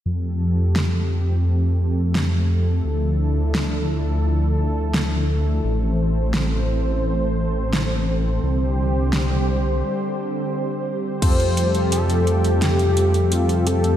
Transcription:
0.06 2.82 F2 medium
0.06 5.60 F3 medium
0.06 8.39 A3 medium
0.06 2.82 C4 medium
0.06 2.82 G4 medium
0.06 8.39 A4 medium
0.76 snare loud
2.15 snare loud
2.85 5.61 D2 medium
2.85 5.61 D4 medium
2.85 5.61 E4 medium
3.55 snare loud
4.94 snare loud
5.64 8.40 A1 medium
5.64 8.41 E3 medium
5.64 11.18 C4 medium
5.64 8.40 C5 medium
6.34 snare loud
7.73 snare loud
8.43 9.83 C2 medium
8.43 11.20 D3 medium
8.43 11.20 G3 medium
8.43 11.20 G4 medium
8.43 11.20 C5 medium
9.13 snare loud
11.22 13.97 F2 medium
11.22 13.97 C3 medium
11.22 13.97 G3 medium
11.22 13.97 A3 medium
11.22 11.70 C4 medium
11.22 11.70 F4 medium
11.22 11.70 G4 medium
11.22 13.97 G4 medium
11.22 11.70 A4 loud
11.22 11.88 C5 loud
11.22 kick loud
11.22 closed hi-hat medium
11.22 crash medium
11.40 closed hi-hat soft
11.57 closed hi-hat medium
11.74 13.97 C4 medium
11.74 13.97 F4 medium
11.74 13.97 G4 medium
11.74 13.97 A4 medium
11.74 closed hi-hat soft
11.92 12.58 A4 medium
11.92 closed hi-hat medium
12.10 closed hi-hat soft
12.27 closed hi-hat soft
12.44 closed hi-hat soft
12.62 13.33 G4 medium
12.62 snare loud
12.62 closed hi-hat medium
12.79 closed hi-hat soft
12.97 closed hi-hat medium
13.14 closed hi-hat soft
13.32 13.68 F4 medium
13.32 closed hi-hat medium
13.49 closed hi-hat soft
13.67 13.97 A4 loud
13.67 closed hi-hat medium
13.84 closed hi-hat soft

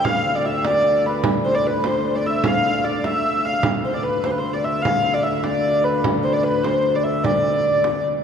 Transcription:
0.00 3.64 D2 medium
0.00 0.35 F5 medium
0.05 frame drum medium
0.35 0.45 D5 medium
0.45 0.64 E5 medium
0.64 1.06 D5 medium
0.64 frame drum medium
1.05 1.25 B4 medium
1.05 frame drum soft
1.24 frame drum medium
1.45 1.55 C5 medium
1.55 1.67 D5 medium
1.67 1.86 B4 medium
1.84 2.15 C5 medium
1.84 frame drum medium
2.15 2.26 D5 medium
2.23 2.46 E5 medium
2.23 frame drum soft
2.44 2.84 F5 medium
2.44 frame drum medium
2.64 frame drum soft
2.84 3.04 D5 medium
2.84 frame drum soft
3.04 3.45 E5 medium
3.04 frame drum medium
3.45 3.63 F5 medium
3.63 8.24 D2 medium
3.63 frame drum medium
3.85 3.94 C5 medium
3.94 4.04 D5 medium
4.03 4.25 B4 medium
4.24 4.31 C5 medium
4.24 frame drum medium
4.30 4.38 B4 medium
4.38 4.54 C5 medium
4.53 4.64 D5 medium
4.64 4.82 E5 medium
4.64 frame drum soft
4.82 5.13 F5 medium
4.82 frame drum medium
5.13 5.23 D5 medium
5.23 5.43 E5 medium
5.43 5.84 D5 medium
5.43 frame drum medium
5.84 6.02 B4 medium
5.84 frame drum soft
6.04 frame drum medium
6.23 6.33 C5 medium
6.33 6.43 D5 medium
6.43 6.63 B4 medium
6.63 6.95 C5 medium
6.63 frame drum medium
6.95 7.03 D5 medium
7.03 7.23 E5 medium
7.03 frame drum soft
7.23 8.03 D5 medium
7.23 frame drum medium
7.44 frame drum soft
7.64 frame drum soft
7.84 frame drum medium

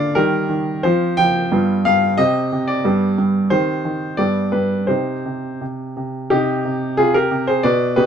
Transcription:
0.00 0.17 D3 medium
0.00 0.11 A#3 soft
0.00 0.11 F4 soft
0.00 0.15 D5 medium
0.00 0.17 F5 medium
0.15 0.48 D#3 medium
0.15 0.79 G3 soft
0.15 0.80 G4 medium
0.15 0.83 A#4 medium
0.49 0.82 D#3 medium
0.83 1.17 F3 medium
0.83 1.48 C4 soft
0.83 1.48 F4 soft
0.83 1.18 C5 medium
1.17 1.50 F3 medium
1.17 1.84 G5 loud
1.52 1.83 G2 medium
1.52 2.13 B3 soft
1.52 2.13 F4 medium
1.85 2.17 G2 medium
1.85 2.17 F5 loud
2.18 2.50 C3 medium
2.18 2.80 C4 soft
2.18 2.80 G4 soft
2.18 2.67 D#5 loud
2.52 2.83 C3 medium
2.68 3.17 D5 medium
2.84 3.16 G2 medium
2.84 3.47 B3 soft
2.84 3.47 G4 soft
3.18 3.50 G2 medium
3.50 3.84 D#3 medium
3.50 4.15 C4 soft
3.50 4.15 G4 soft
3.50 4.18 C5 medium
3.85 4.18 D#3 medium
4.17 4.52 G2 medium
4.17 4.85 B3 soft
4.17 4.85 G4 soft
4.17 4.53 D5 medium
4.52 4.88 G2 medium
4.52 4.88 B4 medium
4.87 5.23 C3 medium
4.87 6.27 D#4 soft
4.87 6.27 G4 soft
4.87 5.60 C5 medium
5.25 5.60 C3 soft
5.61 5.95 C3 soft
5.97 6.30 C3 soft
6.30 6.63 C3 medium
6.30 6.94 D#4 medium
6.30 6.97 G4 medium
6.65 6.97 C3 medium
6.97 7.30 C3 medium
6.97 7.14 F4 medium
6.97 7.14 G#4 medium
7.14 7.46 G4 medium
7.14 7.47 A#4 medium
7.31 7.63 C3 medium
7.47 7.63 G#4 medium
7.47 7.64 C5 medium
7.63 7.96 B2 medium
7.63 7.95 B4 medium
7.63 7.96 D5 medium
7.96 8.06 B2 medium
7.96 8.06 G4 medium
7.96 8.06 B4 medium

